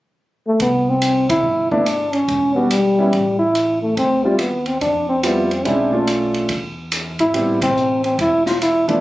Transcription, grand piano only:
1.72 1.85 A3 medium
1.72 1.85 B3 medium
1.72 1.85 D4 medium
1.72 1.85 E4 medium
2.56 2.69 G3 medium
2.56 2.69 B3 medium
2.56 2.69 D4 soft
2.56 2.69 F#4 medium
2.99 3.12 G3 medium
2.99 3.12 B3 medium
2.99 3.12 C#4 medium
2.99 3.12 E4 medium
4.25 4.38 G3 medium
4.25 4.38 C4 soft
4.25 4.38 E4 medium
4.25 4.38 F4 medium
5.23 5.48 G3 medium
5.23 5.48 C4 soft
5.23 5.48 E4 soft
5.23 5.48 F4 medium
5.65 5.90 G#3 medium
5.65 5.90 C4 medium
5.65 5.90 C#4 medium
5.65 5.90 E4 medium
5.92 6.49 A3 medium
5.92 6.49 C#4 soft
5.92 6.49 D4 soft
5.92 6.50 F4 medium
7.34 7.58 G3 medium
7.34 7.59 B3 medium
7.34 7.59 C4 medium
7.34 7.59 E4 medium
8.88 9.01 F3 medium
8.88 9.01 A3 medium
8.88 9.01 B3 medium
8.88 9.01 E4 medium

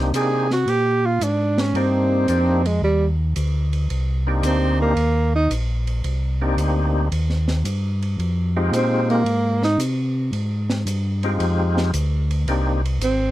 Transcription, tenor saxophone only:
0.16 0.49 G#4 medium
0.53 0.71 F#4 medium
0.69 1.07 G4 medium
1.06 1.25 F4 medium
1.23 1.61 D4 medium
1.60 1.78 C#4 medium
1.77 2.68 C4 medium
2.67 2.83 G#3 medium
2.84 3.05 G3 medium
4.45 4.79 C4 medium
4.81 5.31 A#3 medium
5.35 5.50 D#4 loud
8.75 9.08 C4 medium
9.10 9.60 A#3 medium
9.64 9.79 D#4 medium
13.03 13.31 C4 medium

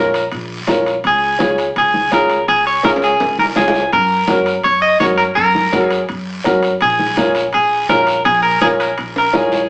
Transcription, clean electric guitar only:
0.00 0.27 A#4 medium
1.07 1.56 G#4 medium
1.78 2.11 G#4 medium
2.14 2.46 A#4 medium
2.48 2.65 G#4 medium
2.67 2.83 C#5 medium
2.85 2.90 A#4 medium
3.04 3.37 G#4 medium
3.39 3.44 A#4 medium
3.57 3.93 G#4 medium
3.93 4.61 A#4 loud
4.64 4.81 C#5 medium
4.82 4.99 D#5 loud
5.00 5.05 C#5 medium
5.18 5.23 A#4 medium
5.35 5.86 A#4 medium
5.86 6.04 G#4 medium
6.82 7.32 G#4 loud
7.54 7.87 G#4 medium
7.90 8.23 A#4 medium
8.25 8.42 G#4 medium
8.43 8.60 A#4 medium
8.62 8.67 G#4 medium
8.80 9.17 A#4 medium
9.18 9.36 A#4 medium
9.36 9.69 G#4 medium

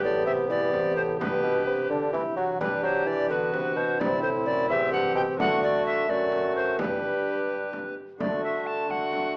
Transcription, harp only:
0.00 1.23 E2 medium
0.00 1.16 B3 medium
0.00 1.21 E4 medium
0.00 2.30 B4 medium
0.05 0.96 A2 medium
0.28 0.73 C3 medium
0.51 1.22 E3 medium
0.74 1.22 C3 medium
0.97 1.22 A2 medium
1.17 4.03 G2 medium
1.17 3.26 B3 medium
1.17 3.28 D4 soft
1.45 3.75 B2 medium
1.68 3.53 C3 medium
1.91 3.31 D3 medium
2.15 3.07 E3 medium
2.84 4.02 G3 medium
3.08 4.02 E3 medium
3.28 4.00 B3 soft
3.28 4.01 D4 medium
3.32 4.03 D3 medium
3.55 3.99 C3 medium
3.77 4.02 B2 medium
3.96 5.41 C3 medium
3.96 5.39 C4 medium
3.96 5.40 E4 medium
3.96 5.40 G4 medium
4.24 5.41 A2 medium
4.47 5.41 F#2 medium
4.70 5.41 E2 medium
4.94 5.42 G2 medium
5.17 5.42 B2 medium
5.36 6.82 D3 medium
5.36 6.04 A3 medium
5.36 6.06 F#4 medium
6.06 6.81 F#2 medium
6.06 6.80 A3 medium
6.06 6.80 F#4 medium
6.77 8.22 G2 medium
6.77 8.16 D4 soft
6.77 8.22 G4 soft
8.18 9.37 D3 soft
8.18 8.88 D4 soft
8.18 8.89 A4 soft
8.89 9.37 D4 soft
8.89 9.37 A4 soft

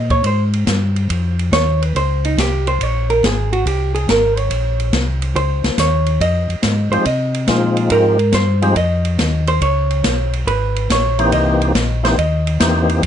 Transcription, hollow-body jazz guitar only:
0.11 0.24 C#5 medium
0.26 0.43 C5 medium
1.53 1.82 C#5 medium
1.82 1.95 B4 medium
1.97 2.24 C5 medium
2.25 2.38 D#4 medium
2.40 2.67 G4 medium
2.68 2.83 C5 loud
2.83 3.10 C#5 medium
3.10 3.23 A#4 medium
3.26 3.52 G#4 medium
3.53 3.65 F#4 medium
3.67 3.94 G4 medium
3.95 4.08 G#4 medium
4.10 4.38 A#4 medium
4.38 4.94 C#5 medium
5.36 5.76 C5 medium
5.80 6.19 C#5 medium
6.21 6.89 D#5 medium
6.92 7.06 C5 medium
7.07 7.74 D#5 medium
7.92 8.31 A#4 medium
8.35 8.74 C5 medium
8.77 9.44 D#5 medium
9.48 9.62 C5 loud
9.62 10.29 C#5 medium
10.47 10.87 B4 medium
10.92 11.30 C#5 medium
11.33 12.00 D#5 medium
12.05 12.17 C5 medium
12.18 12.85 D#5 medium

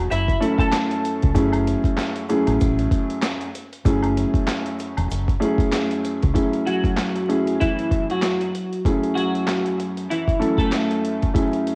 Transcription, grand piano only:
0.00 0.31 F#2 medium
0.00 0.31 A3 medium
0.00 0.31 C#4 medium
0.00 0.31 E4 medium
0.00 0.31 G#4 loud
0.40 1.28 F#2 medium
0.40 1.28 A3 medium
0.40 1.28 C#4 medium
0.40 1.28 E4 medium
0.40 1.28 A4 loud
1.34 2.22 F#2 medium
1.34 2.22 A3 medium
1.34 2.22 C#4 medium
1.34 2.22 E4 medium
1.34 2.22 G#4 loud
2.29 3.45 F#2 loud
2.29 3.45 A3 medium
2.29 3.45 C#4 medium
2.29 3.46 E4 medium
2.29 3.46 G#4 loud
3.85 5.30 F#2 medium
3.85 5.30 A3 medium
3.85 5.31 C#4 medium
3.85 5.31 E4 medium
3.85 5.31 G#4 loud
5.40 6.28 F#2 loud
5.40 6.28 A3 medium
5.40 6.28 C#4 medium
5.40 6.28 E4 medium
5.40 6.28 G#4 loud
6.33 7.22 F#2 medium
6.33 7.22 A3 medium
6.33 7.22 C#4 medium
6.33 7.22 E4 medium
6.33 7.22 G#4 medium
7.29 8.45 F#2 medium
7.29 8.45 A3 medium
7.29 8.45 C#4 medium
7.29 8.45 E4 medium
7.29 8.46 G#4 loud
8.85 10.31 F#2 medium
8.85 10.31 A3 medium
8.85 10.31 C#4 medium
8.85 10.31 E4 medium
8.85 10.31 G#4 loud
10.39 11.28 F#2 medium
10.39 11.28 A3 medium
10.39 11.28 C#4 medium
10.39 11.28 E4 medium
10.39 11.28 A4 loud
11.34 11.75 F#2 medium
11.34 11.75 A3 medium
11.34 11.75 C#4 medium
11.34 11.75 E4 medium
11.34 11.75 G#4 medium

